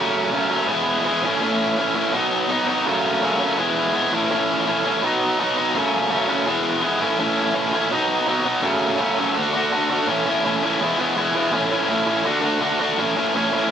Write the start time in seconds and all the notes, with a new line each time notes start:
Already playing: F#2 C#3 F#3 A3 C#4
0.32 F#2 C#3 F#3 A3 C#4
0.50 F#2 C#3 F#3 A3 C#4
0.67 E3 G#3 B3 E4
1.04 E3 G#3 B3 E4
1.23 A2 E3 A3 C#4 E4
1.41 A2 E3 A3 C#4 E4
1.77 A2 E3 A3 C#4 E4
1.95 A2 E3 A3 C#4 E4
2.13 B2 F#3 B3 D#4
2.49 B2 F#3 B3 D#4
2.67 B2 F#3 B3 D#4
2.85 F#2 C#3 F#3 A3 C#4
3.22 F#2 C#3 F#3 A3 C#4
3.39 F#2 C#3 F#3 A3 C#4
3.58 E3 G#3 B3 E4
3.94 E3 G#3 B3 E4
4.12 A2 E3 A3 C#4 E4
4.30 A2 E3 A3 C#4 E4
4.66 A2 E3 A3 C#4 E4
4.84 A2 E3 A3 C#4 E4
5.02 B2 F#3 B3 D#4
5.39 B2 F#3 B3 D#4
5.56 B2 F#3 B3 D#4
5.74 F#2 C#3 F#3 A3 C#4
6.10 F#2 C#3 F#3 A3 C#4
6.28 F#2 C#3 F#3 A3 C#4
6.46 E3 G#3 B3 E4
6.82 E3 G#3 B3 E4
7.00 A2 E3 A3 C#4 E4
7.18 A2 E3 A3 C#4 E4
7.54 A2 E3 A3 C#4 E4
7.72 A2 E3 A3 C#4 E4
7.91 B2 F#3 B3 D#4
8.27 B2 F#3 B3 D#4
8.45 B2 F#3 B3 D#4
8.62 F#2 C#3 F#3 A3 C#4
8.98 F#2 C#3 F#3 A3 C#4
9.17 F#2 C#3 F#3 A3 C#4
9.35 D3 A3 D4 F#4
9.53 D3 A3 D4 F#4
9.72 D3 A3 D4 F#4
9.89 D3 A3 D4 F#4
10.07 A2 E3 A3 C#4 E4
10.25 A2 E3 A3 C#4 E4
10.43 A2 E3 A3 C#4 E4
10.62 A2 E3 A3 C#4 E4
10.80 E3 G#3 B3 E4
10.98 E3 G#3 B3 E4
11.16 E3 G#3 B3 E4
11.35 E3 G#3 B3 E4
11.51 A2 E3 A3 C#4 E4
11.70 A2 E3 A3 C#4 E4
11.88 A2 E3 A3 C#4 E4
12.06 A2 E3 A3 C#4 E4
12.25 D3 A3 D4 F#4
12.42 D3 A3 D4 F#4
12.61 D3 A3 D4 F#4
12.79 D3 A3 D4 F#4
12.98 A2 E3 A3 C#4 E4
13.15 A2 E3 A3 C#4 E4
13.34 A2 E3 A3 C#4 E4
13.52 A2 E3 A3 C#4 E4